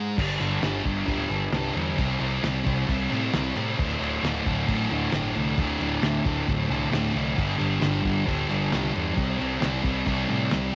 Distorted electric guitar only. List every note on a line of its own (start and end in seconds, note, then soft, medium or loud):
0.00 0.17 G#2 medium
0.00 0.18 G#3 loud
0.18 0.38 G2 medium
0.18 0.39 D3 medium
0.18 0.41 G3 medium
0.39 0.60 G2 medium
0.39 0.61 D3 medium
0.39 0.63 G3 medium
0.61 0.82 G2 medium
0.61 0.84 D3 medium
0.61 0.86 G3 medium
0.83 1.05 G2 medium
0.83 1.06 D3 medium
0.83 1.07 G3 medium
1.06 1.28 G2 loud
1.06 1.30 D3 medium
1.06 1.30 G3 medium
1.29 1.51 G2 medium
1.29 1.51 D3 loud
1.29 1.53 G3 loud
1.52 1.73 G2 medium
1.52 1.74 D3 medium
1.52 1.75 G3 medium
1.74 1.96 G2 medium
1.74 1.97 D3 medium
1.74 1.96 G3 loud
1.97 2.18 C3 medium
1.97 2.19 G3 loud
1.97 2.19 C4 loud
2.19 2.41 C3 medium
2.19 2.42 G3 medium
2.19 2.43 C4 medium
2.42 2.63 C3 medium
2.42 2.64 G3 loud
2.42 2.65 C4 loud
2.64 2.86 C3 medium
2.64 2.88 G3 medium
2.64 2.88 C4 loud
2.88 3.09 C3 loud
2.88 3.10 G3 loud
2.88 3.11 C4 loud
3.10 3.31 C3 medium
3.10 3.33 G3 medium
3.10 3.33 C4 loud
3.33 3.55 C3 medium
3.33 3.56 G3 medium
3.33 3.56 C4 medium
3.56 3.77 C3 medium
3.56 3.78 G3 medium
3.56 3.78 C4 loud
3.77 3.98 D2 loud
3.77 3.99 A2 loud
3.77 4.00 D3 loud
3.98 4.22 D2 medium
3.98 4.22 A2 medium
3.98 4.24 D3 loud
4.22 4.44 D2 medium
4.22 4.45 A2 medium
4.22 4.46 D3 loud
4.44 4.65 D2 medium
4.44 4.66 A2 loud
4.44 4.67 D3 medium
4.67 4.88 D2 loud
4.67 4.89 A2 loud
4.67 4.90 D3 loud
4.89 5.10 D2 medium
4.89 5.12 A2 loud
4.89 5.13 D3 loud
5.11 5.34 D2 medium
5.11 5.35 A2 medium
5.11 5.35 D3 medium
5.35 5.55 D2 medium
5.35 5.57 A2 medium
5.35 5.58 D3 loud
5.57 5.78 D2 medium
5.57 5.80 A2 medium
5.57 5.81 D3 loud
5.80 6.01 D2 medium
5.80 6.01 A2 medium
5.80 6.02 D3 medium
6.02 6.24 D2 medium
6.02 6.25 A2 loud
6.02 6.25 D3 loud
6.25 6.46 D2 medium
6.25 6.47 A2 medium
6.25 6.47 D3 medium
6.47 6.68 D2 medium
6.47 6.69 A2 loud
6.47 6.70 D3 loud
6.69 6.90 D2 medium
6.69 6.91 A2 medium
6.69 6.92 D3 loud
6.91 7.13 D2 medium
6.91 7.14 A2 medium
6.91 7.15 D3 medium
7.14 7.36 D2 medium
7.14 7.37 A2 medium
7.14 7.36 D3 medium
7.37 7.57 G2 medium
7.37 7.57 D3 loud
7.37 7.59 G3 loud
7.58 7.78 G2 medium
7.58 7.80 D3 medium
7.58 7.81 G3 medium
7.80 8.01 G2 medium
7.80 8.02 D3 medium
7.80 8.04 G3 medium
8.02 8.24 G2 medium
8.02 8.25 D3 medium
8.02 8.25 G3 medium
8.25 8.48 G2 loud
8.25 8.49 D3 medium
8.25 8.49 G3 loud
8.49 8.71 G2 medium
8.49 8.72 D3 loud
8.49 8.73 G3 loud
8.72 8.92 G2 loud
8.72 8.93 D3 medium
8.72 8.94 G3 loud
8.94 9.15 G2 medium
8.94 9.16 D3 medium
8.94 9.15 G3 medium
9.15 9.37 C3 loud
9.15 9.38 G3 loud
9.15 9.39 C4 loud
9.38 9.58 C3 medium
9.38 9.59 G3 loud
9.38 9.60 C4 medium
9.59 9.81 C3 medium
9.59 9.82 G3 medium
9.59 9.83 C4 loud
9.82 10.05 C3 medium
9.82 10.06 G3 medium
9.82 10.07 C4 medium
10.06 10.28 C3 loud
10.06 10.28 G3 loud
10.06 10.29 C4 loud
10.29 10.49 C3 medium
10.29 10.50 G3 medium
10.29 10.51 C4 medium
10.50 10.72 C3 medium
10.50 10.72 G3 medium
10.50 10.73 C4 medium